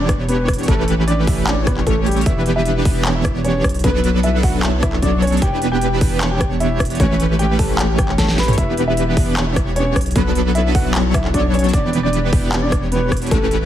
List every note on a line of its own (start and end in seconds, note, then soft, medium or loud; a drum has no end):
0.00 0.66 E1 medium
0.00 0.66 E3 medium
0.00 0.66 B3 medium
0.00 0.16 D4 medium
0.00 0.66 D4 medium
0.00 0.66 G4 medium
0.00 0.66 C#5 medium
0.00 0.16 D5 medium
0.09 kick loud
0.09 cross-stick medium
0.09 closed hi-hat medium
0.29 0.51 B3 medium
0.29 0.51 B4 medium
0.29 closed hi-hat medium
0.48 kick medium
0.48 cross-stick medium
0.48 closed hi-hat soft
0.54 closed hi-hat medium
0.59 closed hi-hat medium
0.63 closed hi-hat medium
0.68 2.24 A1 medium
0.68 1.25 E3 loud
0.68 1.25 A3 medium
0.68 0.90 A3 medium
0.68 1.25 C#4 medium
0.68 1.25 G4 medium
0.68 0.90 A4 medium
0.68 1.25 B4 loud
0.68 kick loud
0.68 closed hi-hat medium
0.88 closed hi-hat medium
1.08 1.19 D4 medium
1.08 1.19 D5 medium
1.08 closed hi-hat medium
1.27 1.45 E3 medium
1.27 1.45 A3 medium
1.27 1.45 C#4 medium
1.27 1.39 E4 medium
1.27 1.45 G4 medium
1.27 1.45 B4 loud
1.27 1.39 E5 medium
1.27 kick loud
1.27 open hi-hat medium
1.47 2.24 E3 medium
1.47 2.24 A3 medium
1.47 2.24 C#4 medium
1.47 1.58 D4 medium
1.47 2.24 G4 medium
1.47 2.24 C#5 medium
1.47 1.58 D5 medium
1.47 clap loud
1.47 closed hi-hat medium
1.67 1.78 B3 medium
1.67 1.78 B4 medium
1.67 kick loud
1.67 cross-stick medium
1.67 closed hi-hat medium
1.77 clap soft
1.87 1.98 A3 medium
1.87 1.98 A4 medium
1.87 kick medium
1.87 closed hi-hat medium
2.06 2.17 G3 medium
2.06 2.17 G4 medium
2.06 closed hi-hat soft
2.11 closed hi-hat medium
2.16 closed hi-hat soft
2.21 closed hi-hat medium
2.26 3.62 E1 medium
2.26 2.83 E3 loud
2.26 2.83 B3 medium
2.26 2.83 D4 medium
2.26 2.43 E4 medium
2.26 2.83 G4 medium
2.26 2.83 B4 loud
2.26 2.43 E5 loud
2.26 kick loud
2.26 closed hi-hat medium
2.46 closed hi-hat medium
2.56 2.72 E4 medium
2.56 2.72 E5 medium
2.66 closed hi-hat medium
2.85 3.03 E3 medium
2.85 3.03 B3 medium
2.85 3.03 D4 medium
2.85 3.03 G4 medium
2.85 3.03 B4 medium
2.85 kick loud
2.85 open hi-hat medium
3.05 3.63 E3 medium
3.05 3.63 B3 medium
3.05 3.63 D4 medium
3.05 3.63 G4 medium
3.05 3.63 C#5 medium
3.05 clap loud
3.05 closed hi-hat medium
3.15 3.32 E4 medium
3.15 3.32 E5 medium
3.25 kick loud
3.25 cross-stick medium
3.25 closed hi-hat medium
3.44 3.67 C#4 medium
3.44 3.67 C#5 medium
3.44 closed hi-hat medium
3.64 5.40 B1 medium
3.64 kick medium
3.64 cross-stick medium
3.64 closed hi-hat soft
3.69 closed hi-hat medium
3.74 closed hi-hat soft
3.79 closed hi-hat medium
3.84 4.41 F#3 loud
3.84 4.41 B3 medium
3.84 4.06 B3 medium
3.84 4.41 D4 medium
3.84 4.41 A4 medium
3.84 4.41 B4 loud
3.84 4.06 B4 medium
3.84 kick loud
3.84 closed hi-hat medium
4.04 closed hi-hat medium
4.23 4.35 E4 medium
4.23 4.35 E5 medium
4.23 closed hi-hat medium
4.43 4.61 F#3 medium
4.43 4.61 B3 medium
4.43 4.61 D4 medium
4.43 4.54 F#4 medium
4.43 4.61 A4 medium
4.43 4.61 B4 loud
4.43 4.54 F#5 medium
4.43 kick loud
4.43 open hi-hat loud
4.63 5.40 F#3 medium
4.63 5.40 B3 medium
4.63 5.40 D4 medium
4.63 4.74 E4 medium
4.63 5.40 A4 medium
4.63 5.40 C#5 medium
4.63 4.74 E5 medium
4.63 clap loud
4.63 closed hi-hat medium
4.83 4.94 E4 medium
4.83 4.94 E5 medium
4.83 kick loud
4.83 cross-stick medium
4.83 closed hi-hat medium
4.93 clap soft
5.02 5.14 D4 medium
5.02 5.14 D5 medium
5.02 kick medium
5.02 closed hi-hat medium
5.22 5.33 C#4 medium
5.22 5.33 C#5 medium
5.22 closed hi-hat soft
5.27 closed hi-hat medium
5.32 closed hi-hat soft
5.37 closed hi-hat medium
5.42 6.98 E1 medium
5.42 5.99 E3 loud
5.42 5.99 B3 medium
5.42 5.99 D4 medium
5.42 5.99 G4 medium
5.42 5.59 G4 medium
5.42 5.99 B4 loud
5.42 5.59 G5 loud
5.42 kick loud
5.42 closed hi-hat medium
5.62 closed hi-hat medium
5.72 5.88 G4 medium
5.72 5.88 G5 medium
5.81 closed hi-hat medium
6.01 6.19 E3 medium
6.01 6.19 B3 medium
6.01 6.19 D4 medium
6.01 6.19 G4 medium
6.01 6.19 B4 loud
6.01 kick loud
6.01 open hi-hat loud
6.21 6.98 E3 medium
6.21 6.98 B3 medium
6.21 6.97 D4 medium
6.21 6.98 G4 medium
6.21 6.97 C#5 medium
6.21 clap loud
6.21 closed hi-hat medium
6.31 6.47 G4 medium
6.31 6.47 G5 medium
6.41 kick loud
6.41 cross-stick medium
6.41 closed hi-hat medium
6.60 6.82 E4 medium
6.60 6.82 E5 medium
6.60 closed hi-hat medium
6.80 kick medium
6.80 cross-stick medium
6.80 closed hi-hat medium
6.85 closed hi-hat medium
6.90 closed hi-hat medium
6.95 closed hi-hat medium
7.00 8.56 A1 medium
7.00 7.57 E3 loud
7.00 7.57 A3 medium
7.00 7.22 C#4 medium
7.00 7.57 C#4 medium
7.00 7.57 G4 medium
7.00 7.57 B4 loud
7.00 7.22 C#5 medium
7.00 kick loud
7.00 closed hi-hat medium
7.20 closed hi-hat medium
7.39 7.50 G4 medium
7.39 7.50 G5 medium
7.39 closed hi-hat medium
7.59 7.76 E3 medium
7.59 7.76 A3 medium
7.59 7.76 C#4 medium
7.59 7.76 G4 medium
7.59 7.70 A4 medium
7.59 7.76 B4 loud
7.59 7.70 A5 medium
7.59 kick loud
7.59 open hi-hat medium
7.79 8.55 E3 medium
7.79 8.55 A3 medium
7.79 8.55 C#4 medium
7.79 8.55 G4 medium
7.79 7.90 G4 medium
7.79 8.55 C#5 medium
7.79 7.90 G5 medium
7.79 clap loud
7.79 closed hi-hat medium
7.98 8.10 G4 medium
7.98 8.10 G5 medium
7.98 kick loud
7.98 cross-stick medium
7.98 closed hi-hat medium
8.09 clap soft
8.18 8.29 A4 medium
8.18 8.29 A5 medium
8.18 kick medium
8.18 snare medium
8.18 closed hi-hat medium
8.28 snare medium
8.38 8.49 B4 medium
8.38 8.49 B5 medium
8.38 snare medium
8.38 closed hi-hat soft
8.43 closed hi-hat medium
8.48 closed hi-hat medium
8.48 mid tom medium
8.53 closed hi-hat medium
8.58 9.94 E1 medium
8.58 9.15 E3 loud
8.58 9.14 B3 medium
8.58 9.15 D4 medium
8.58 8.74 E4 medium
8.58 9.14 G4 medium
8.58 9.15 B4 loud
8.58 8.74 E5 loud
8.58 kick loud
8.58 closed hi-hat medium
8.77 closed hi-hat medium
8.88 9.04 E4 medium
8.88 9.04 E5 medium
8.97 closed hi-hat medium
9.17 9.34 E3 medium
9.17 9.34 B3 medium
9.17 9.34 D4 medium
9.17 9.34 G4 medium
9.17 9.34 B4 loud
9.17 kick loud
9.17 open hi-hat medium
9.37 9.95 E3 medium
9.37 9.95 B3 medium
9.37 9.95 D4 medium
9.37 9.95 G4 medium
9.37 9.95 C#5 loud
9.37 clap loud
9.37 closed hi-hat medium
9.47 9.63 E4 medium
9.47 9.63 E5 medium
9.56 kick loud
9.56 cross-stick medium
9.56 closed hi-hat medium
9.76 9.98 C#4 medium
9.76 9.98 C#5 medium
9.76 closed hi-hat medium
9.96 11.72 B1 medium
9.96 kick medium
9.96 cross-stick medium
9.96 closed hi-hat medium
10.01 closed hi-hat medium
10.06 closed hi-hat medium
10.11 closed hi-hat medium
10.15 10.72 F#3 loud
10.15 10.72 B3 medium
10.15 10.38 B3 medium
10.15 10.72 D4 medium
10.15 10.72 A4 medium
10.15 10.72 B4 loud
10.15 10.38 B4 medium
10.15 kick loud
10.15 closed hi-hat medium
10.35 closed hi-hat medium
10.55 10.66 E4 medium
10.55 10.66 E5 medium
10.55 closed hi-hat medium
10.75 10.92 F#3 medium
10.75 10.92 B3 medium
10.75 10.92 D4 medium
10.75 10.86 F#4 medium
10.75 10.92 A4 medium
10.75 10.92 B4 loud
10.75 10.86 F#5 loud
10.75 kick loud
10.75 open hi-hat medium
10.94 11.71 F#3 medium
10.94 11.71 B3 medium
10.94 11.71 D4 medium
10.94 11.06 E4 medium
10.94 11.71 A4 medium
10.94 11.71 C#5 medium
10.94 11.06 E5 medium
10.94 clap loud
10.94 closed hi-hat medium
11.14 11.25 E4 medium
11.14 11.25 E5 medium
11.14 kick loud
11.14 cross-stick medium
11.14 closed hi-hat medium
11.24 clap soft
11.34 11.45 D4 medium
11.34 11.45 D5 medium
11.34 kick medium
11.34 closed hi-hat medium
11.54 11.65 C#4 medium
11.54 11.65 C#5 medium
11.54 closed hi-hat soft
11.59 closed hi-hat medium
11.64 closed hi-hat soft
11.69 closed hi-hat medium
11.73 13.29 E1 medium
11.73 12.30 E3 loud
11.73 12.30 B3 medium
11.73 11.90 D4 medium
11.73 12.30 D4 medium
11.73 12.30 G4 medium
11.73 12.30 B4 loud
11.73 11.90 D5 loud
11.73 kick loud
11.73 closed hi-hat medium
11.93 closed hi-hat medium
12.03 12.20 D4 medium
12.03 12.20 D5 loud
12.13 closed hi-hat medium
12.33 12.50 E3 medium
12.33 12.50 B3 medium
12.33 12.50 D4 medium
12.33 12.50 G4 medium
12.33 12.50 B4 loud
12.33 kick loud
12.33 open hi-hat medium
12.52 13.29 E3 medium
12.52 13.29 B3 medium
12.52 13.29 D4 medium
12.52 13.29 G4 medium
12.52 13.29 C#5 medium
12.52 clap loud
12.52 closed hi-hat medium
12.62 12.79 D4 medium
12.62 12.79 D5 medium
12.72 kick loud
12.72 cross-stick medium
12.72 closed hi-hat medium
12.92 13.14 B3 medium
12.92 13.14 B4 medium
12.92 closed hi-hat medium
13.12 kick medium
13.12 cross-stick medium
13.12 closed hi-hat soft
13.17 closed hi-hat medium
13.22 closed hi-hat medium
13.27 closed hi-hat medium
13.31 13.65 A1 medium
13.31 13.65 E3 loud
13.31 13.65 A3 loud
13.31 13.53 A3 medium
13.31 13.65 C#4 medium
13.31 13.65 G4 medium
13.31 13.54 A4 medium
13.31 13.65 B4 loud
13.31 kick loud
13.31 closed hi-hat medium
13.51 closed hi-hat medium